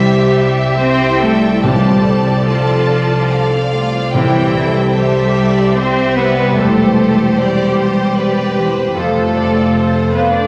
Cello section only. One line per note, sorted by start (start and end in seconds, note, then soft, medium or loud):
0.00 0.80 G3 medium
0.80 1.21 C4 loud
1.21 1.64 A3 medium
1.64 2.47 G3 medium
2.48 3.73 F3 medium
4.14 4.93 E3 medium
4.98 5.77 G3 medium
5.77 6.17 C4 medium
6.17 6.57 B3 medium
6.58 7.36 A3 medium
7.39 8.56 G3 medium
8.96 10.08 A3 medium
10.13 10.32 B3 medium
10.32 10.47 D4 medium